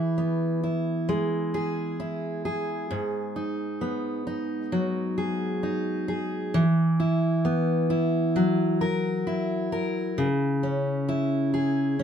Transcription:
steel-string acoustic guitar
Already playing: E3 E4 G#4
0.18 B3
0.64 E4
1.09 G#3
1.54 G#4
2.00 E4
2.45 G#4
2.91 G#2
3.36 D#4
3.81 B3
4.27 D#4
4.72 F#3
5.18 G#4
5.63 D#4
6.08 G#4
6.54 E3
7.00 E4
7.45 B3
7.90 E4
8.36 F#3
8.81 A#4
9.27 E4
9.72 A#4
10.18 C#3
10.63 C#4
11.09 E4
11.54 G#4
11.99 C#4

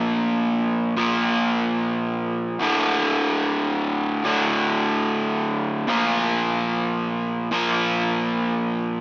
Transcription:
overdriven electric guitar
Already playing: A#2 F3 A#3
0.96 A#2 F3 A#3
2.59 D2 A2 D3
4.24 D2 A2 D3
5.88 A#2 F3 A#3
7.51 A#2 F3 A#3

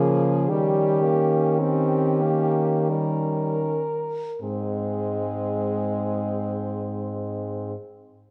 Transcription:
french horn
Already playing: C#3 F3 A#3 G#4
0.49 D#3 G3 C#4 G4
1.02 A#3
1.60 C4 G4
2.21 A#3
2.89 G3 A#4
4.41 G#2 G#3 C4 G#4

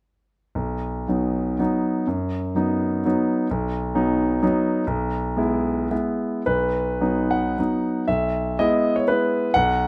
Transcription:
grand piano
0.55 B1
1.08 F#3 B3 D#4
1.59 F#3 B3 D#4
2.07 F#2
2.55 F#3 B3 D#4
3.06 F#3 B3 D#4
3.51 B1
3.95 F#3 B3 D#4
4.43 F#3 B3 D#4
4.87 B1
5.37 G#3 B3 E4
5.91 G#3 B3 E4
6.46 B1 B4
7.01 F#3 B3 D#4
7.31 F#5
7.58 F#3 B3 D#4
8.08 B1 E5
8.59 G#3 B3 E4 D#5
8.96 C#5
9.08 G#3 B3 E4 B4
9.54 B1 F#5

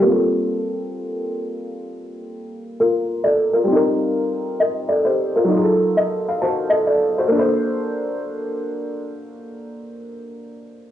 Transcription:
upright piano
0.00 G3 A#3
0.04 C4 F4
0.10 A4
2.80 F4 A#4
3.24 A4 D5
3.53 F4 A#4
3.64 G3 C4
3.72 D#4
3.76 A#4
4.60 A#4 D#5
4.89 A4 D5
5.05 G4 C5
5.36 F4 A#4
5.44 F#3 D#4
5.52 F4
5.56 G#4
5.63 A4
5.97 D#5
6.29 F5
6.42 F#4 C5 A5
6.70 A4 D#5
6.87 A4 D5
7.18 F#4 C5
7.28 A#3
7.32 D4 A4
7.39 C5

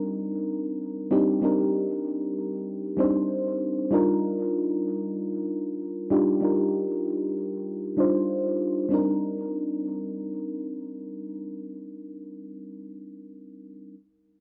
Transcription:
fm electric piano
Already playing: G3 C4 D4 D#4 A#4
1.11 G3 C4 D4 D#4 G4
1.41 G3 C4 D4 D#4 A#4
2.97 G3 C4 D4 D#4 C5
3.91 G3 D4 D#4 F4 A#4
6.10 G3 D4 D#4 F4 G4
6.41 G3 D4 D#4 F4 A#4
7.97 G3 D4 D#4 F4 C5
8.89 G3 C4 D4
8.93 D#4 A#4

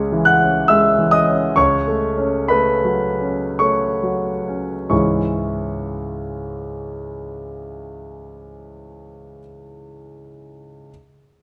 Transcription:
grand piano
Already playing: C#2 G#3 C#4 C#5 C#6
0.12 E3
0.25 F#5 F#6
0.41 C#4
0.68 G#3 E5 E6
0.99 E3
1.11 D#5 D#6
1.27 C#4
1.56 C#2 C#5 C#6
1.87 A3
2.17 C#4
2.48 A3 B4 B5
2.84 F#3
3.20 C#4
3.59 A3 C#5 C#6
4.03 F#3
4.48 C#4
4.90 C#2 G#2 E3 G#3 C#4 E4 C#6

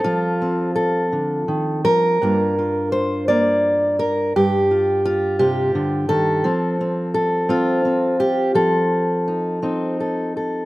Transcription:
steel-string acoustic guitar
Already playing: A4
0.04 F3 F4
0.42 C4
0.76 A4
1.12 D3
1.48 D#3
1.84 F3 A#4
2.22 G2 A#3 D4 F4
2.59 F4
2.92 C5
3.28 A#3 D5
3.99 A#4
4.36 G2 G4
4.71 F4
5.05 F4
5.39 C3 G4
5.75 D3
6.09 D#3 A4
6.44 F3 C4
6.81 C4
7.14 A4
7.49 C4 F4
7.85 C4
8.20 G4
8.55 F3 A4
9.28 D#4
9.62 C4 D#4
10.00 A4
10.37 A4

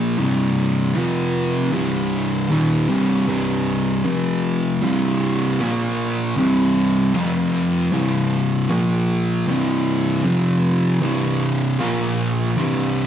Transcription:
distorted electric guitar
Already playing: A#2 F3 A#3
0.18 C2 G2 C3
0.95 F2 C3 F3
1.72 C2 G2 C3
2.50 D#2 A#2 D#3
2.89 C2 G2 C3
3.28 C2 G2 C3
4.05 F2 C3 F3
4.82 C2 G2 C3
5.59 A#2 F3 A#3
6.36 C2 G2 C3
7.14 F2 C3 F3
7.92 C2 G2 C3
8.70 A#2 F3 A#3
9.47 C2 G2 C3
10.24 F2 C3 F3
11.01 C2 G2 C3
11.79 A#2 F3 A#3
12.57 C2 G2 C3

